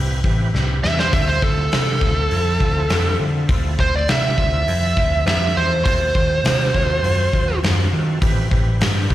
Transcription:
Already playing: picked electric bass C2, tonewheel organ C4 E4 G4 B4
0.23 picked electric bass A1, tonewheel organ C4 E4 G4 B4, kick
0.52 picked electric bass C2, tonewheel organ C4 E4 G4 B4, snare
0.81 picked electric bass E2, tonewheel organ C4 E4 G4 B4, lead electric guitar E5, snare
0.99 lead electric guitar C5, snare
1.11 picked electric bass D2, tonewheel organ C4 E4 F4 A4, lead electric guitar E5, kick, open hi-hat
1.27 lead electric guitar C5
1.40 picked electric bass D2, tonewheel organ C4 E4 F4 A4, lead electric guitar A4, kick
1.69 picked electric bass C3, tonewheel organ C4 E4 F4 A4, snare, open hi-hat
2.00 picked electric bass D2, tonewheel organ C4 E4 F4 A4, kick
2.29 picked electric bass F2, tonewheel organ C4 E4 F4 A4, open hi-hat
2.57 picked electric bass D2, tonewheel organ C4 E4 F4 A4, kick
2.87 picked electric bass F2, tonewheel organ C4 E4 F4 B4, snare, open hi-hat
3.16 picked electric bass D3, tonewheel organ C4 E4 F4 A4
3.47 picked electric bass D2, tonewheel organ C4 E4 F4 A4, kick, open hi-hat
3.76 picked electric bass D2, tonewheel organ C4 E4 F4 A4, lead electric guitar C5, kick
3.96 lead electric guitar D5
4.06 picked electric bass C3, tonewheel organ C4 E4 F4 A4, snare, open hi-hat
4.11 lead electric guitar E5
4.36 picked electric bass D2, tonewheel organ C4 E4 F4 A4, kick
4.65 picked electric bass F2, tonewheel organ C4 E4 F4 A4, open hi-hat
4.94 picked electric bass D2, tonewheel organ C4 E4 F4 A4, kick
5.26 picked electric bass F2, tonewheel organ C4 E4 F4 A4, lead electric guitar E5, snare, open hi-hat
5.55 picked electric bass E2, tonewheel organ C4 E4 F4 A4, lead electric guitar C5
5.84 picked electric bass D#2, tonewheel organ C4 F4 F#4 A4, lead electric guitar C5, kick, open hi-hat
6.14 picked electric bass D#2, tonewheel organ C4 F4 F#4 A4, kick
6.44 picked electric bass C3, tonewheel organ C4 F4 F#4 A4, snare, open hi-hat
6.73 picked electric bass D#2, tonewheel organ C4 F4 F#4 A4, kick
7.03 picked electric bass F#2, tonewheel organ C4 F4 F#4 A4, open hi-hat
7.33 picked electric bass D#2, tonewheel organ C4 F4 F#4 A4, kick
7.63 picked electric bass F#2, tonewheel organ C4 F4 F#4 A4, snare, open hi-hat
7.92 picked electric bass D#3, tonewheel organ C4 F4 F#4 A4
8.21 picked electric bass A1, tonewheel organ C4 E4 G4 B4, kick, open hi-hat
8.50 picked electric bass A1, tonewheel organ C4 E4 G4 B4, kick
8.79 picked electric bass G2, tonewheel organ C4 E4 G4 B4, snare, open hi-hat
9.08 picked electric bass A1, tonewheel organ C4 E4 G4 B4, kick

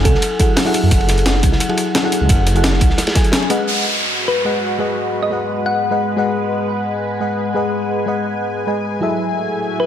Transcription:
Already playing: fm electric piano F#3 E4 A4 F#5 G#5
0.05 detuned saw bass C#2, synth pluck A4, kick, closed hi-hat, ride
0.14 snare
0.22 closed hi-hat, ride
0.39 fm electric piano F#3 E4 G#4 A4 F#5, kick, closed hi-hat, ride
0.57 snare, closed hi-hat, open hi-hat
0.64 fm electric piano F#3 E4 G#4 A4 F#5, ride
0.74 closed hi-hat, ride
0.83 detuned saw bass F#2
0.91 detuned saw bass F#1, kick, closed hi-hat, ride
1.01 ride
1.08 snare, closed hi-hat, ride
1.18 closed hi-hat, ride
1.26 snare, closed hi-hat, ride
1.34 snare
1.43 detuned saw bass C#2, kick, closed hi-hat, ride
1.52 snare
1.60 closed hi-hat, ride
1.69 fm electric piano F#3 E4 G#4 A4 F#5, ride
1.77 closed hi-hat, ride
1.95 snare, closed hi-hat, ride
2.02 fm electric piano F#3 E4 G#4 A4 F#5
2.12 closed hi-hat, ride
2.21 detuned saw bass C#2
2.29 detuned saw bass F#1, kick, closed hi-hat, ride
2.47 closed hi-hat, ride
2.54 fm electric piano F#3 E4 G#4 A4 F#5, closed hi-hat
2.64 snare, closed hi-hat, ride
2.73 snare
2.81 detuned saw bass C#2, kick, closed hi-hat, ride
2.90 snare
2.98 snare, closed hi-hat, ride
3.07 snare, ride
3.15 fm electric piano F#3 E4 G#4 A4 G#5, kick, snare, closed hi-hat, ride
3.24 closed hi-hat
3.32 snare, closed hi-hat, ride
3.42 ride
3.50 fm electric piano G#3 G#4 B4 D#5 F#5, closed hi-hat, ride
3.67 analog synth pad G#3 F#4 B4, downlifter
4.28 synth pluck B4
4.45 fm electric piano G#3 G#4 B4 D#5 F#5
4.78 fm electric piano G#3 G#4 B4 D#5 F#5
5.23 synth pluck D#5
5.30 fm electric piano G#3 G#4 B4 D#5 F#5
5.66 synth pluck F#5
5.91 fm electric piano G#3 G#4 B4 D#5 F#5
6.16 fm electric piano G#3 G#4 B4 D#5 F#5
6.43 analog synth pad G#5
7.20 fm electric piano G#3 G#4 B4 D#5 F#5
7.54 fm electric piano G#3 G#4 B4 D#5 F#5
8.06 fm electric piano G#3 G#4 B4 D#5 F#5
8.67 fm electric piano G#3 G#4 B4 D#5 G#5
9.00 fm electric piano F#3 E4 G#4 A4 E5
9.19 analog synth pad A3 F#4 E5
9.80 synth pluck B4

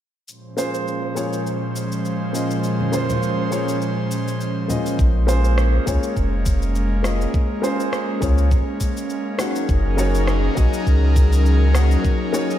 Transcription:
0.28 analog synth pad A#2 F3 G#3 C#4 C5, shaker
0.57 grand piano A#3 C#4 F4 G#4 C5, shaker
0.74 shaker
0.88 shaker
1.15 grand piano A#3 C#4 F4 G#4 C#5, shaker
1.33 shaker
1.47 shaker
1.76 shaker
1.92 shaker
2.05 shaker
2.33 grand piano A#3 C#4 F4 G#4 D#5, shaker
2.51 shaker
2.64 shaker
2.80 high conga
2.92 grand piano A#3 C#4 F4 G#4 C5, high conga, shaker
3.10 low conga, shaker
3.23 shaker
3.51 grand piano A#3 C#4 F4 G#4 C#5, shaker
3.69 shaker
3.82 shaker
4.11 shaker
4.28 shaker
4.41 shaker
4.68 grand piano A#3 C#4 F4 G#4 D#5, low conga, shaker
4.86 shaker
4.99 sub bass A#1, analog synth pad G#3 A#3 C#4, kick, shaker
5.27 grand piano A#3 C#4 F4 G#4 C5, shaker
5.45 shaker
5.58 cross-stick, shaker
5.86 sub bass C#2, grand piano A#3 C#4 F4 G#4 C#5, kick, shaker
6.03 shaker
6.17 sub bass F1, kick, shaker
6.46 kick, shaker
6.62 shaker
6.75 shaker
7.03 grand piano A#3 C#4 F4 G#4 D#5, cross-stick, shaker
7.21 shaker
7.34 kick, shaker
7.62 grand piano A#3 C#4 F4 G#4 C5, shaker
7.80 shaker
7.93 cross-stick, shaker
8.21 sub bass C#2, grand piano A#3 C#4 F4 G#4 C#5, kick, shaker
8.38 shaker
8.51 sub bass A#1, kick, shaker
8.80 kick, shaker
8.97 shaker
9.10 shaker
9.38 analog synth pad F#3 D#4 G#4 A#4, grand piano A#3 D#4 F#4 G#4 F#5, cross-stick, shaker
9.56 shaker
9.69 sub bass F#1, kick, shaker
9.97 grand piano A#3 D#4 F#4 G#4 C#5, shaker
10.15 shaker
10.27 cross-stick, shaker
10.55 sub bass A#1, grand piano A#3 D#4 F#4 G#4 D#5, kick, shaker
10.73 shaker
10.87 sub bass C#2, kick, shaker
11.16 kick, shaker
11.33 shaker
11.46 shaker
11.73 grand piano A#3 D#4 F#4 G#4 F#5, cross-stick, shaker
11.91 shaker
12.05 kick, shaker
12.33 grand piano A#3 D#4 F#4 G#4 C#5, shaker
12.51 shaker

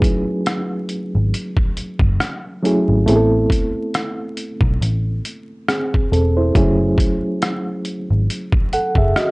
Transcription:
Already playing: reed electric piano F#3 A3 C#4 D#4 E4 G#4 B4
0.02 kick, closed hi-hat
0.46 cross-stick, closed hi-hat
0.89 closed hi-hat
1.15 picked electric bass G#1
1.34 closed hi-hat
1.57 kick
1.77 closed hi-hat
1.99 picked electric bass F#1, kick
2.20 cross-stick, closed hi-hat
2.63 reed electric piano F#3 A3 C#4 E4 G#4, closed hi-hat
2.89 picked electric bass G#1
3.06 picked electric bass A1, reed electric piano A3 B3 C4 E4 G#4, closed hi-hat
3.16 reed electric piano A4
3.50 kick, closed hi-hat
3.94 cross-stick, closed hi-hat
4.37 closed hi-hat
4.61 picked electric bass B1, kick
4.81 picked electric bass A1, closed hi-hat
5.25 closed hi-hat
5.69 reed electric piano C4 G#4, cross-stick, closed hi-hat
5.94 kick
6.12 picked electric bass E1, reed electric piano C4 A4, closed hi-hat
6.37 reed electric piano E4 C5
6.54 picked electric bass F#1, reed electric piano F#3 A3 C#4 E4 G#4, kick, closed hi-hat
6.98 kick, closed hi-hat
7.42 cross-stick, closed hi-hat
7.85 closed hi-hat
8.11 picked electric bass G#1
8.30 closed hi-hat
8.52 kick
8.73 reed electric piano A4 F#5, closed hi-hat
8.95 picked electric bass F#1, reed electric piano G#4 E5, kick
9.16 reed electric piano F#4 D#5, cross-stick, closed hi-hat

